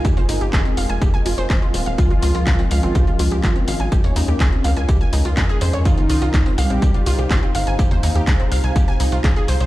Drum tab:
HH |xxoxxxoxxxoxxxox|xxoxxxoxxxoxxxox|xxoxxxoxxxoxxxox|xxoxxxoxxxoxxxox|
TB |x-x-x-x-x-x-x-x-|x-x-x-x-x-x-x-x-|x-x-x-x-x-x-x-x-|x-x-x-x-x-x-x-x-|
CP |----x-------x---|----x-------x---|----x-------x---|----x-------x---|
SD |--o-o-------o---|----o-------o-o-|--o-o-------o---|----o-------o-o-|
BD |o---o---o---o---|o---o---o---o---|o---o---o---o---|o---o---o---o---|

HH |xxoxxxoxxxoxxxox|
TB |x-x-x-x-x-x-x-x-|
CP |----x-------x---|
SD |--o-o-------o---|
BD |o---o---o---o---|